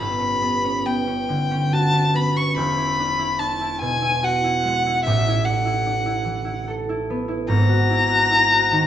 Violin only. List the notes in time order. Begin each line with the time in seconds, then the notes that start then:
0.00 B5
0.86 G5
1.73 A5
2.15 B5
2.37 C#6
2.57 B5
3.39 A5
3.81 G#5
4.23 F#5
5.04 E5
5.45 F#5
7.49 A#5